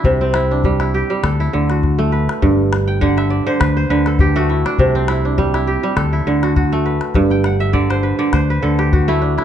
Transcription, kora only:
X:1
M:4/4
L:1/16
Q:"Swing 16ths" 1/4=102
K:Clyd
V:1 name="Kora"
[DE] C E D2 E G2 A E2 F3 B2- | B z2 g f e d c B c B A G F E D- | D C E D2 E G2 A E2 F F2 B2- | B g f e d c B d c B A G F E D E |]
V:2 name="Kora" clef=bass
C,2 z2 G,2 z G, z2 D,2 z A,2 z | G,,2 z2 D,2 z D, z2 D,2 z A,2 z | C,2 z2 G,2 z G, z2 D,2 z A,2 z | G,,2 z2 D,2 z D, z2 D,2 z A,2 z |]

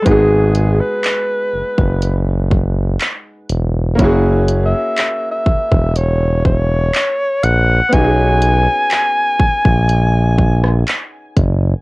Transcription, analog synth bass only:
X:1
M:4/4
L:1/16
Q:1/4=61
K:G#m
V:1 name="Analog synth bass" clef=bass
G,,,4 z2 F,,, F,,,4- F,,, z2 E,,,2 | F,,,4 z2 E,,, E,,,4- E,,, z2 A,,,2 | B,,,4 z2 A,,, A,,,4- A,,, z2 F,,,2 |]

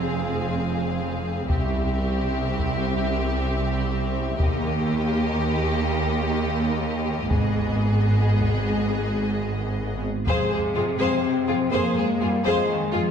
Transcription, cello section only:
X:1
M:6/8
L:1/8
Q:3/8=82
K:Fm
V:1 name="Cello section" clef=bass
F,,6 | C,,6- | C,,6 | E,,6- |
E,,6 | A,,6- | A,,4- A,, z | C,6 |
F, A, G, F, E, F, |]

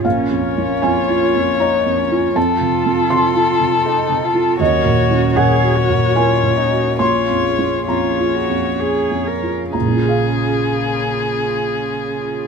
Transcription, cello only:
X:1
M:3/4
L:1/8
Q:1/4=75
K:Bbm
V:1 name="Cello"
D D F2 E D | F4 E F | G2 A G F E | F2 F G A B |
D,6 |]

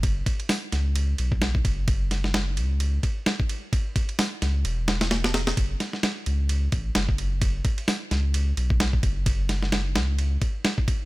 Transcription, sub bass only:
X:1
M:4/4
L:1/8
Q:"Swing 16ths" 1/4=130
K:F#m
V:1 name="Sub bass" clef=bass
F,,, z2 C,,2 B,,,2 F,,,- | F,,,3 C,,2 z3 | z3 C,, E,,,4 | F,,, z2 C,,2 A,,, F,,,2- |
F,,, z2 C,,2 B,,,2 F,,,- | F,,,3 C,,2 z3 |]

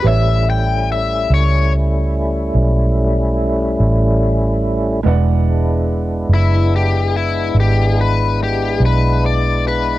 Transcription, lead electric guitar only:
X:1
M:12/8
L:1/8
Q:3/8=48
K:A
V:1 name="Lead electric guitar"
e =g e c z8 | z3 E =G E G B G B d B |]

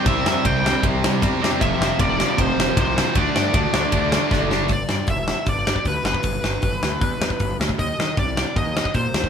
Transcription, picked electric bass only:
X:1
M:4/4
L:1/8
Q:1/4=155
K:Ddor
V:1 name="Picked electric bass" clef=bass
C,, F,, C,, C,, C,,2 E,,2 | F,,, F,,, F,,,2 F,,, F,,, C,,2 | D,, G,, D,, D,, D,,2 ^F,,,2 | [K:G] G,,, G,, E,,,2 G,,,2 D,, G,,, |
G,,, G,,, G,,, D,, E,, E,, G,,, D,, | _E,, _E, C,,2 E,,2 _B,, E,, |]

